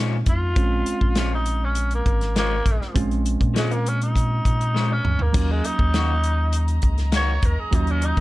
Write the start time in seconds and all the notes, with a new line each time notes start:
Already playing: A#2 F3 G#3 C4 C#4 D#4
0.26 F2 F4, kick, closed hi-hat
0.56 A#1 G#3 C4 C#4 F4, kick, closed hi-hat
0.86 A#1, closed hi-hat
1.01 A#1, kick
1.15 A#2 F3 G#3 C#4 F4, snare, closed hi-hat
1.34 D#4
1.46 closed hi-hat
1.64 C#4
1.75 closed hi-hat
1.91 A#3, closed hi-hat
2.06 G#1, kick, closed hi-hat
2.21 snare, closed hi-hat
2.35 A#2 F3 G#3 A#3 C#4, snare, closed hi-hat
2.66 A#1, kick, closed hi-hat
2.81 A#1, snare
2.94 A#1 G#3 C4 C#4 F4, kick, closed hi-hat
3.11 closed hi-hat
3.25 closed hi-hat
3.40 A#2, kick, closed hi-hat
3.54 A#2 F3 G#3 C#4, snare, closed hi-hat
3.58 G#3
3.71 A#3, closed hi-hat
3.86 C#4, closed hi-hat
4.01 D#4, closed hi-hat
4.16 kick, closed hi-hat
4.45 A#2, kick, closed hi-hat
4.61 closed hi-hat
4.74 A#2 F3 G#3 C#4, snare
4.92 C#4
5.05 D2, mid tom
5.19 A#3, floor tom
5.33 D#2 F#3 A#3 C#4 F4 D#5 A#5, kick, closed hi-hat, crash
5.52 G#3
5.64 D#2 D#4, closed hi-hat
5.79 D#2, kick
5.94 D#3 A#3 C#4 F#4, snare, closed hi-hat
6.23 closed hi-hat
6.52 closed hi-hat
6.68 closed hi-hat
6.82 C#2, kick, closed hi-hat
6.98 snare, closed hi-hat
7.12 D#3 A#3 C#4 F#4, snare, closed hi-hat
7.16 C#5
7.42 D#2 A#4, kick, closed hi-hat
7.58 D#2 G#4
7.71 D#2 F#3 A#3 C#4 D#4 F4, kick, closed hi-hat
7.87 C#4, closed hi-hat
8.02 D#4, closed hi-hat
8.17 D#3, kick, closed hi-hat